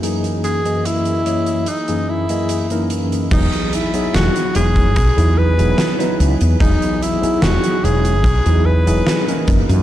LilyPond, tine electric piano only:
\new Staff \with { instrumentName = "Tine electric piano" } { \time 4/4 \key e \lydian \tempo 4 = 73 <fis, e ais cis' dis' gis'>8. <fis, e ais cis' gis' dis''>8. <fis, e ais cis' cis'' dis''>8 r16 <fis, e ais cis' dis' gis'>8 <fis, e ais cis' gis' dis''>8 <fis, e ais cis' dis' ais'>8. | <e fis b dis' gis'>8. <fis b dis' e' gis'>8. <fis b dis' e' cis''>8 r16 <fis b dis' e' gis'>8 <fis b dis' e' gis'>8 <fis b dis' e' b'>8. | <e fis b dis' gis'>8. <fis b dis' e' gis'>8. <fis b dis' e' cis''>8 r16 <fis b dis' e' gis'>8 <fis b dis' e' gis'>8 <e ais cis' dis' ais'>8. | }